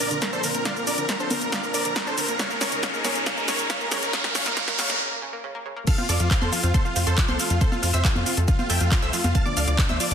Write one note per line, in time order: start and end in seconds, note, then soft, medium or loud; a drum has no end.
0.00 2.36 A#2 medium
0.00 2.36 F3 medium
0.00 2.36 C4 medium
0.00 2.36 D4 medium
0.00 0.07 D4 medium
0.00 2.36 A#4 medium
0.00 0.09 A#4 medium
0.00 0.09 D5 medium
0.00 open hi-hat loud
0.00 riser medium
0.00 shaker medium
0.11 0.18 D3 medium
0.11 0.20 A#4 medium
0.11 closed hi-hat medium
0.11 shaker soft
0.22 0.26 A#3 medium
0.22 0.31 A#4 medium
0.22 kick loud
0.22 snare medium
0.22 closed hi-hat medium
0.22 shaker soft
0.33 0.40 D4 loud
0.33 0.42 A4 medium
0.33 0.42 C5 medium
0.33 shaker soft
0.44 0.50 D3 medium
0.44 0.53 A#4 medium
0.44 open hi-hat loud
0.44 shaker medium
0.55 0.59 A#3 medium
0.55 0.63 A#4 medium
0.55 closed hi-hat medium
0.55 shaker soft
0.65 0.72 D3 medium
0.65 0.74 D5 medium
0.65 0.74 F5 medium
0.65 kick loud
0.65 snare medium
0.65 closed hi-hat medium
0.65 shaker soft
0.76 0.80 A#3 medium
0.76 0.85 A#4 medium
0.76 shaker soft
0.87 0.94 D4 loud
0.87 0.96 A#4 medium
0.87 0.96 D5 loud
0.87 open hi-hat loud
0.87 shaker medium
0.98 1.05 D3 medium
0.98 1.07 A#4 medium
0.98 closed hi-hat medium
0.98 shaker soft
1.09 1.13 A#3 medium
1.09 1.18 A#4 medium
1.09 kick loud
1.09 snare medium
1.09 closed hi-hat medium
1.09 shaker soft
1.20 1.26 D4 loud
1.20 1.29 A4 medium
1.20 1.29 C5 medium
1.20 shaker soft
1.31 1.37 D3 medium
1.31 1.40 A#4 medium
1.31 open hi-hat loud
1.31 high conga medium
1.31 shaker medium
1.42 1.46 A#3 medium
1.42 1.50 A#4 medium
1.42 closed hi-hat medium
1.42 shaker soft
1.52 1.59 D3 medium
1.52 1.61 D5 medium
1.52 1.61 F5 loud
1.52 kick loud
1.52 snare medium
1.52 closed hi-hat medium
1.52 shaker soft
1.63 1.67 A#3 medium
1.63 1.72 A#4 medium
1.63 shaker soft
1.74 1.81 D4 loud
1.74 1.83 A#4 medium
1.74 1.83 D5 medium
1.74 open hi-hat loud
1.74 shaker medium
1.85 1.92 D3 medium
1.85 1.94 A#4 medium
1.85 closed hi-hat medium
1.85 shaker soft
1.96 2.00 A#3 medium
1.96 2.05 A#4 medium
1.96 kick loud
1.96 snare medium
1.96 closed hi-hat medium
1.96 shaker soft
2.07 2.13 D4 loud
2.07 2.16 A4 medium
2.07 2.16 C5 medium
2.07 shaker soft
2.18 2.24 D3 medium
2.18 2.26 A#4 medium
2.18 open hi-hat loud
2.18 shaker medium
2.28 2.32 A#3 medium
2.28 2.38 A#4 medium
2.28 closed hi-hat medium
2.28 shaker soft
2.39 4.98 C#2 medium
2.39 2.46 C#3 medium
2.39 4.98 C#3 medium
2.39 4.98 G#3 medium
2.39 4.98 D#4 medium
2.39 4.98 G#4 medium
2.39 2.48 C#5 medium
2.39 2.48 F5 medium
2.39 kick loud
2.39 snare medium
2.39 closed hi-hat medium
2.39 shaker soft
2.50 2.54 A#3 medium
2.50 2.59 A#4 medium
2.50 shaker soft
2.61 2.68 C#4 loud
2.61 2.70 A#4 medium
2.61 2.70 C#5 loud
2.61 snare medium
2.61 open hi-hat loud
2.61 shaker medium
2.72 2.79 C#3 medium
2.72 2.81 A#4 medium
2.72 closed hi-hat medium
2.72 shaker soft
2.83 2.90 C#3 medium
2.83 2.92 C#5 medium
2.83 2.92 F5 loud
2.83 kick loud
2.83 snare medium
2.83 closed hi-hat medium
2.83 shaker soft
2.94 2.98 A#3 medium
2.94 3.02 A#4 medium
2.94 shaker soft
3.04 3.11 C#4 loud
3.04 3.13 A#4 medium
3.04 3.13 C#5 loud
3.04 snare medium
3.04 open hi-hat loud
3.04 high conga medium
3.04 shaker medium
3.15 3.22 C#3 medium
3.15 3.24 A#4 medium
3.15 closed hi-hat medium
3.15 shaker soft
3.26 3.33 C#3 medium
3.26 3.35 C#5 medium
3.26 3.35 F5 loud
3.26 kick loud
3.26 snare medium
3.26 closed hi-hat medium
3.26 shaker soft
3.37 3.41 A#3 medium
3.37 3.46 A#4 medium
3.37 shaker soft
3.48 3.55 C#4 loud
3.48 3.57 A#4 medium
3.48 3.57 C#5 loud
3.48 snare medium
3.48 open hi-hat loud
3.48 shaker medium
3.59 3.66 C#3 medium
3.59 3.68 A#4 medium
3.59 closed hi-hat medium
3.59 shaker soft
3.70 3.76 C#3 medium
3.70 3.79 C#5 medium
3.70 3.79 F5 medium
3.70 kick loud
3.70 snare medium
3.70 closed hi-hat medium
3.70 shaker soft
3.81 3.85 A#3 medium
3.81 3.90 A#4 medium
3.81 shaker soft
3.91 3.98 C#4 loud
3.91 4.01 A#4 medium
3.91 4.01 C#5 medium
3.91 snare medium
3.91 open hi-hat loud
3.91 shaker medium
4.02 4.09 C#3 medium
4.02 4.11 A#4 medium
4.02 closed hi-hat medium
4.02 shaker soft
4.13 4.20 C#3 medium
4.13 4.22 C#5 medium
4.13 4.22 F5 loud
4.13 kick loud
4.13 snare medium
4.13 closed hi-hat medium
4.13 shaker soft
4.24 4.28 A#3 medium
4.24 4.33 A#4 medium
4.24 snare medium
4.24 shaker soft
4.35 4.42 C#3 medium
4.35 4.44 C#5 medium
4.35 4.44 F5 loud
4.35 snare medium
4.35 open hi-hat loud
4.35 shaker medium
4.46 4.50 A#3 medium
4.46 4.55 A#4 medium
4.46 snare medium
4.46 closed hi-hat medium
4.46 high conga medium
4.46 shaker soft
4.57 4.64 C#3 medium
4.57 4.66 C#5 medium
4.57 4.66 F5 loud
4.57 kick loud
4.57 snare loud
4.57 closed hi-hat medium
4.57 shaker soft
4.68 4.72 A#3 medium
4.68 4.77 A#4 medium
4.68 snare medium
4.68 shaker soft
4.79 4.85 C#3 medium
4.79 4.87 C#5 medium
4.79 4.88 F5 loud
4.79 snare loud
4.79 open hi-hat loud
4.79 high conga medium
4.79 shaker medium
4.89 4.93 A#3 medium
4.89 4.98 A#4 medium
4.89 snare medium
4.89 closed hi-hat medium
4.89 high conga medium
4.89 shaker soft
5.00 5.07 C#3 medium
5.11 5.15 A#3 medium
5.22 5.29 C#3 medium
5.33 5.37 A#3 medium
5.44 5.50 C#3 medium
5.55 5.59 A#3 medium
5.66 5.72 C#3 medium
5.77 5.80 A#3 medium
5.87 10.14 F3 medium
5.87 5.94 F3 medium
5.87 10.14 A3 medium
5.87 9.32 C4 medium
5.87 5.96 A4 medium
5.87 5.96 F5 loud
5.87 5.96 F6 loud
5.87 kick loud
5.87 closed hi-hat medium
5.87 crash loud
5.87 shaker soft
5.98 6.02 C4 medium
5.98 6.07 F4 medium
5.98 6.07 F5 medium
5.98 high conga medium
5.98 shaker soft
6.09 6.18 F2 medium
6.09 6.18 F4 medium
6.09 6.16 A4 loud
6.09 6.18 D5 loud
6.09 6.18 D6 medium
6.09 open hi-hat loud
6.09 shaker medium
6.20 6.29 F2 medium
6.20 6.27 F3 medium
6.20 6.29 F4 medium
6.20 6.29 F5 medium
6.20 closed hi-hat medium
6.20 shaker soft
6.31 6.35 C4 medium
6.31 6.40 F4 medium
6.31 6.40 F5 medium
6.31 kick loud
6.31 clap loud
6.31 closed hi-hat medium
6.31 shaker soft
6.41 6.51 F2 medium
6.41 6.48 A4 loud
6.41 6.51 A4 medium
6.41 6.51 C5 medium
6.41 6.50 C6 medium
6.41 high conga medium
6.41 shaker soft
6.52 6.59 F3 medium
6.52 6.61 F4 medium
6.52 6.61 F5 medium
6.52 open hi-hat loud
6.52 shaker medium
6.63 6.73 F2 medium
6.63 6.67 C4 medium
6.63 6.72 F4 medium
6.63 6.72 F5 medium
6.63 closed hi-hat medium
6.63 shaker soft
6.74 6.83 A4 medium
6.74 6.81 A4 loud
6.74 6.83 C5 medium
6.74 6.83 C6 loud
6.74 kick loud
6.74 closed hi-hat medium
6.74 high conga medium
6.74 shaker soft
6.85 6.92 F3 medium
6.85 6.94 F4 medium
6.85 6.94 F5 medium
6.85 shaker soft
6.96 7.05 F2 medium
6.96 7.00 C4 medium
6.96 7.05 F4 medium
6.96 7.05 F5 medium
6.96 open hi-hat loud
6.96 shaker medium
7.07 7.16 F2 medium
7.07 7.13 A4 loud
7.07 7.16 A4 medium
7.07 7.16 C5 loud
7.07 7.16 C6 medium
7.07 closed hi-hat medium
7.07 shaker soft
7.18 7.24 F3 medium
7.18 7.26 F4 medium
7.18 7.26 F5 medium
7.18 kick loud
7.18 clap loud
7.18 closed hi-hat medium
7.18 shaker soft
7.28 7.38 C2 medium
7.28 7.33 C4 medium
7.28 7.37 A4 medium
7.28 7.37 C5 medium
7.28 7.37 C6 loud
7.28 high conga medium
7.28 shaker soft
7.39 7.48 F4 medium
7.39 7.46 A4 loud
7.39 7.48 F5 medium
7.39 open hi-hat loud
7.39 shaker medium
7.50 7.60 F2 medium
7.50 7.57 F3 medium
7.50 7.59 F4 medium
7.50 7.59 F5 medium
7.50 closed hi-hat medium
7.50 shaker soft
7.61 7.65 C4 medium
7.61 7.70 A4 medium
7.61 7.70 C5 medium
7.61 7.70 C6 loud
7.61 kick loud
7.61 closed hi-hat medium
7.61 shaker soft
7.72 7.81 F4 medium
7.72 7.79 A4 loud
7.72 7.81 F5 medium
7.72 high conga medium
7.72 shaker soft
7.83 7.92 F2 loud
7.83 7.90 F3 medium
7.83 7.92 F4 medium
7.83 7.92 F5 medium
7.83 open hi-hat loud
7.83 shaker medium
7.93 8.03 F2 medium
7.93 7.98 C4 medium
7.93 8.02 C5 medium
7.93 8.02 E5 loud
7.93 8.02 E6 medium
7.93 closed hi-hat medium
7.93 shaker soft
8.04 8.13 F4 medium
8.04 8.11 A4 loud
8.04 8.13 F5 medium
8.04 kick loud
8.04 clap loud
8.04 closed hi-hat medium
8.04 shaker soft
8.15 8.25 F2 medium
8.15 8.22 F3 medium
8.15 8.24 F4 medium
8.15 8.24 F5 medium
8.15 high conga medium
8.15 shaker soft
8.26 8.30 C4 medium
8.26 8.35 F4 medium
8.26 8.35 F5 medium
8.26 open hi-hat loud
8.26 shaker medium
8.37 8.47 F2 medium
8.37 8.44 A4 loud
8.37 closed hi-hat medium
8.37 shaker soft
8.48 8.55 F3 medium
8.48 8.57 F4 medium
8.48 8.57 F5 medium
8.48 kick loud
8.48 closed hi-hat medium
8.48 shaker soft
8.59 8.63 C4 medium
8.59 8.68 F4 medium
8.59 8.68 F5 medium
8.59 high conga medium
8.59 shaker soft
8.70 8.79 F2 medium
8.70 8.77 A4 loud
8.70 8.79 E5 medium
8.70 8.79 G5 loud
8.70 8.79 G6 medium
8.70 open hi-hat loud
8.70 shaker medium
8.81 8.90 F2 medium
8.81 8.87 F3 medium
8.81 8.90 F4 medium
8.81 8.89 F5 medium
8.81 closed hi-hat medium
8.81 shaker soft
8.92 8.96 C4 medium
8.92 9.01 F4 medium
8.92 9.00 F5 medium
8.92 kick loud
8.92 clap loud
8.92 closed hi-hat medium
8.92 shaker soft
9.02 9.12 C2 medium
9.02 9.09 A4 loud
9.02 9.11 C5 medium
9.02 9.11 E5 loud
9.02 9.11 E6 loud
9.02 shaker soft
9.13 9.20 F3 medium
9.13 9.22 F4 medium
9.13 9.22 F5 medium
9.13 open hi-hat loud
9.13 shaker medium
9.24 9.33 F2 medium
9.24 9.28 C4 medium
9.24 9.33 F4 medium
9.24 9.33 F5 medium
9.24 closed hi-hat medium
9.24 high conga medium
9.24 shaker soft
9.35 10.14 D4 medium
9.35 9.42 F4 loud
9.35 9.44 F5 medium
9.35 9.44 A5 loud
9.35 9.44 A6 loud
9.35 kick loud
9.35 closed hi-hat medium
9.35 shaker soft
9.46 9.53 D3 medium
9.46 9.55 D5 medium
9.46 9.55 D6 medium
9.46 high conga medium
9.46 shaker soft
9.57 9.66 D2 medium
9.57 9.61 A3 medium
9.57 9.66 D5 medium
9.57 9.66 F5 loud
9.57 9.66 F6 medium
9.57 open hi-hat loud
9.57 shaker medium
9.67 9.77 D2 medium
9.67 9.74 F4 loud
9.67 9.77 D5 medium
9.67 9.76 D6 medium
9.67 closed hi-hat medium
9.67 shaker soft
9.78 9.85 D3 medium
9.78 9.87 D6 medium
9.78 kick loud
9.78 clap loud
9.78 closed hi-hat medium
9.78 shaker soft
9.89 9.99 D2 medium
9.89 9.93 A3 medium
9.89 9.98 C5 medium
9.89 9.98 E5 medium
9.89 9.98 E6 medium
9.89 high conga medium
9.89 shaker soft
10.00 10.07 F4 loud
10.00 10.09 D5 medium
10.00 10.09 D6 medium
10.00 open hi-hat loud
10.00 shaker medium
10.11 10.14 D2 medium
10.11 10.14 D3 medium
10.11 10.14 D5 medium
10.11 10.14 D6 medium
10.11 closed hi-hat medium
10.11 shaker soft